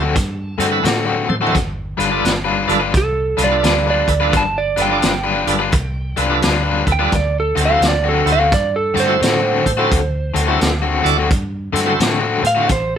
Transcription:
Already playing: D2 A5
0.02 D3 A3 C4 F#4
0.15 G2, muted overdriven electric guitar stroke, kick, snare, closed hi-hat
0.58 G2 D3 A3 C4 F#4 A4 C5, closed hi-hat
0.71 E4 F#4 A4 B4
0.83 A2 D3 A3 C4 F#4, snare, closed hi-hat
1.06 D3 A3 C4 F#4
1.28 A2 A4 C5, muted overdriven electric guitar stroke, high tom
1.41 D3 A3 C4 E4 F#4 A4 C5
1.47 floor tom
1.55 G1, kick, snare, closed hi-hat
1.97 G1 G3 D4 F4 A4 B4, closed hi-hat
2.11 G3 D4 F4 A4 B4
2.25 G1, snare, closed hi-hat
2.45 G3 D4 F4 B4
2.67 G1 D4 F4 A4 B4, closed hi-hat
2.80 G3 D4 F4 B4
2.93 C2, muted overdriven electric guitar stroke, kick, snare, closed hi-hat
2.97 A4
3.37 C2 G3 D4 F4 A4 B4, closed hi-hat
3.44 D5
3.51 D4 F4 A4 B4
3.64 D2 G3 D4 F4 B4, snare, closed hi-hat
3.87 G3 D4 F4 B4 D5
4.08 D2 A4 B4, muted overdriven electric guitar stroke, kick, closed hi-hat
4.20 G3 D4 F4 A4 B4
4.33 G1, kick, snare, closed hi-hat
4.37 A5
4.58 D5
4.77 G1 G3 D4 F4 A4 B4, closed hi-hat
4.82 G5
4.90 G3 D4 F4 A4 B4 D5
5.02 G1, snare, closed hi-hat
5.24 G3 D4 F4 B4
5.47 G1 D4 F4 A4 B4, closed hi-hat
5.59 G3 D4 F4 B4
5.72 C2, muted overdriven electric guitar stroke, kick, closed hi-hat
6.16 C2 G3 D4 F4 A4 B4, closed hi-hat
6.30 D4 F4 A4 B4
6.42 D2 G3 D4 F4 B4, snare, closed hi-hat
6.63 G3 D4 F4 B4
6.85 D2 A4 B4, muted overdriven electric guitar stroke, kick, closed hi-hat
6.92 G5
6.99 G3 D4 F4 A4 B4
7.12 D2 D5, kick, snare, closed hi-hat
7.40 A4
7.55 D2 D3 A3 C4 F#4 A4 C5, closed hi-hat
7.65 A3 C4 F#4 F5
7.69 D3 E4 F#4 A4 C5
7.81 D2, snare, closed hi-hat
7.88 D5
8.04 D3 A3 C4 F#4
8.09 A4
8.26 D2 E4 F#4 A4 C5, closed hi-hat
8.32 F5
8.38 D3 A3 C4 F#4
8.51 G2 D5, muted overdriven electric guitar stroke, kick, snare, closed hi-hat
8.76 A4
8.94 G2 D3 A3 C4 F#4 A4 D5, snare, closed hi-hat
9.00 C5
9.08 E4 F#4 A4 C5
9.21 A2 D3 A3 C4 F#4, snare, closed hi-hat
9.42 D3 A3 C4 F#4
9.65 A2 A4 C5, muted overdriven electric guitar stroke, kick, closed hi-hat
9.77 D3 A3 C4 E4 F#4 A4 C5
9.92 D2, kick, closed hi-hat
10.34 D2 D3 A3 C4 F#4 A4 C5, closed hi-hat
10.47 D3 A3 C4 E4 F#4 A4 C5
10.61 D2, snare, closed hi-hat
10.82 D3 A3 C4 F#4
11.04 D2 E4 F#4 A4 D5, closed hi-hat
11.17 D3 A3 C4 F#4
11.31 G2, muted overdriven electric guitar stroke, kick, closed hi-hat
11.73 G2 D3 A3 C4 F#4 A4 C5, closed hi-hat
11.77 snare
11.86 E4 F#4 A4 C5
12.00 A2 D3 A3 C4 F#4, snare, closed hi-hat
12.20 D3 A3 C4 F#4
12.43 A2 A4 C5 F5, muted overdriven electric guitar stroke, closed hi-hat
12.55 D3 A3 C4 E4 F#4 A4 C5
12.69 A1 C5, kick, snare, closed hi-hat

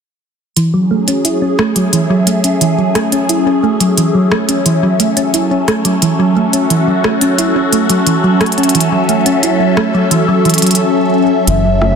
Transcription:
0.57 E3 F#3, closed hi-hat
0.74 F#3 C#4 G#4
0.91 A3
1.08 C#4, closed hi-hat
1.25 E4, closed hi-hat
1.42 C#4
1.59 A3, cross-stick
1.65 E5
1.70 A4
1.76 F#3, closed hi-hat
1.93 E3, closed hi-hat
2.10 F#3
2.27 A3, closed hi-hat
2.44 C#4, closed hi-hat
2.61 E3, closed hi-hat
2.78 F#3
2.95 A3, cross-stick, closed hi-hat
3.12 C#4, closed hi-hat
3.29 E4, closed hi-hat
3.46 C#4
3.63 A3
3.80 F#3, closed hi-hat
3.97 E3, closed hi-hat
4.14 F#3
4.32 A3, cross-stick
4.49 C#4, closed hi-hat
4.66 E3, closed hi-hat
4.83 F#3
5.00 A3, closed hi-hat
5.17 C#4, closed hi-hat
5.34 E4, closed hi-hat
5.51 C#4
5.68 A3, cross-stick, closed hi-hat
5.85 F#3, closed hi-hat
6.02 E3, closed hi-hat
6.19 F#3 F#4
6.36 A3
6.53 C#4, closed hi-hat
6.70 E3, closed hi-hat
6.87 F#3
7.04 A3, cross-stick
7.21 C#4, closed hi-hat
7.38 E4, closed hi-hat
7.55 C#4
7.73 A3, closed hi-hat
7.90 F#3, closed hi-hat
8.07 E3, closed hi-hat
8.24 F#3
8.41 A3, cross-stick, closed hi-hat
8.46 closed hi-hat
8.52 closed hi-hat
8.58 C#4, closed hi-hat
8.63 closed hi-hat
8.69 closed hi-hat
8.75 E3, closed hi-hat
8.80 closed hi-hat
8.92 F#3
9.09 A3, closed hi-hat
9.26 C#4, closed hi-hat
9.43 E4, closed hi-hat
9.60 C#4
9.77 A3, cross-stick
9.94 F#3
10.11 E3, closed hi-hat
10.28 F#3
10.45 E3, closed hi-hat
10.50 closed hi-hat
10.54 closed hi-hat
10.58 closed hi-hat
10.62 F#3, closed hi-hat
10.67 closed hi-hat
10.71 closed hi-hat
10.75 closed hi-hat
11.47 F#1 E3 E5, closed hi-hat
11.65 F#3
11.82 A3, cross-stick

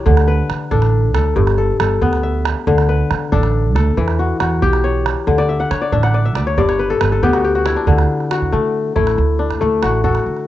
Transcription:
Already playing: E3 F#4 G4 C#5
0.06 D2 D3, calabash thump
0.17 calabash click
0.28 B4
0.50 D3, calabash click
0.71 A1 D4 A4, calabash thump, calabash click
0.82 calabash click
1.14 D2 A4, calabash click
1.36 G1 G2, calabash thump, calabash click
1.47 calabash click
1.58 A4
1.80 G1 A4, calabash click
1.91 calabash click
2.02 D2 B3, calabash thump, calabash click
2.13 calabash click
2.23 E5
2.45 calabash click
2.67 D2 D3, calabash thump
2.78 calabash click
2.89 B4
3.11 D3, calabash click
3.32 A1 D4 A4, calabash thump, calabash click
3.43 calabash click
3.75 D2 A4, calabash click
3.97 E2 E3, calabash thump, calabash click
4.08 calabash click
4.19 F#4
4.40 E2 F#4, calabash click
4.51 calabash click
4.62 B1 G4, calabash thump, calabash click
4.73 calabash click
4.84 C#5
5.06 calabash click
5.27 D2 D3, calabash thump
5.38 D5, calabash click
5.49 E5
5.60 F#5, calabash click
5.71 D3 C#5, calabash click
5.82 D5
5.92 A1 D4 E5, calabash thump, calabash click
6.03 F#5, calabash click
6.14 D5, calabash click
6.25 E5
6.35 D2 D5, calabash click
6.47 C#5
6.57 G1 G2 D5, calabash thump, calabash click
6.69 C#5, calabash click
6.79 B4
6.90 A4
7.01 G1 B4, calabash click
7.12 A4
7.23 D2 B3 G4, calabash thump, calabash click
7.33 F#4, calabash click
7.45 G4
7.55 F#4, calabash click
7.66 E4, calabash click
7.76 D4
7.87 D2 D3, calabash thump
7.99 calabash click
8.20 calabash click
8.31 F#4, calabash click
8.42 calabash thump
8.52 D3 A3
8.96 A1 A3 E4, calabash thump
9.07 calabash click
9.18 D2, calabash click
9.39 D4
9.50 calabash thump, calabash click
9.61 D2 A3
9.83 A1 F#4, calabash click
10.04 F#4 A4, calabash thump
10.15 calabash click
10.26 D3
10.37 calabash click

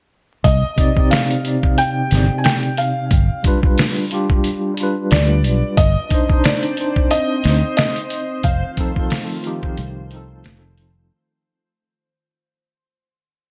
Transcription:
0.44 C2 D#5, kick, closed hi-hat
0.76 C3 C4 D#4, kick, closed hi-hat
0.81 D5
0.95 C3 C4 D#4, kick
1.00 D5
1.11 F5, snare, closed hi-hat
1.30 closed hi-hat
1.43 C3 C4 D#4, closed hi-hat
1.48 D5
1.63 kick
1.78 G5, closed hi-hat
2.08 C3 C4, closed hi-hat
2.12 G1 D#4, snare
2.17 D5
2.38 G#5
2.44 G5, snare, closed hi-hat
2.63 closed hi-hat
2.77 F5, closed hi-hat
3.11 G1, kick, closed hi-hat
3.43 G3 D4 F4, kick, closed hi-hat
3.47 B4
3.62 G3 D4 F4, kick
3.66 B4
3.78 snare, open hi-hat
4.09 G3 D4 F4, closed hi-hat
4.14 G4
4.30 kick
4.44 closed hi-hat
4.74 G3 D4, closed hi-hat
4.80 F4 B4
5.11 D2 D5, snare, closed hi-hat
5.44 B1, closed hi-hat
5.77 G1 C4 C5 D#5, kick, closed hi-hat
6.09 D4 D#4, kick, closed hi-hat
6.14 C5
6.28 D4 D#4, kick
6.33 C5
6.44 D5, snare, closed hi-hat
6.63 closed hi-hat
6.76 D4 D#4, closed hi-hat
6.81 C5
6.96 kick
7.11 D#5, closed hi-hat
7.41 C4, closed hi-hat
7.45 D2 D#4, snare
7.50 C5
7.77 D#5, snare, closed hi-hat
7.96 closed hi-hat
8.10 closed hi-hat
8.43 F1 D#3 A3 F4 F5, kick, closed hi-hat
8.76 F3 C4 D#4, kick, closed hi-hat
8.80 A4
8.96 C4 D#4 A4, kick
9.10 snare, open hi-hat
9.42 F3 C4 D#4, closed hi-hat
9.47 G4
9.63 kick
9.78 C2, closed hi-hat
10.07 F3 C4, closed hi-hat
10.13 D#4 A4
10.44 F1, snare, closed hi-hat
10.78 closed hi-hat

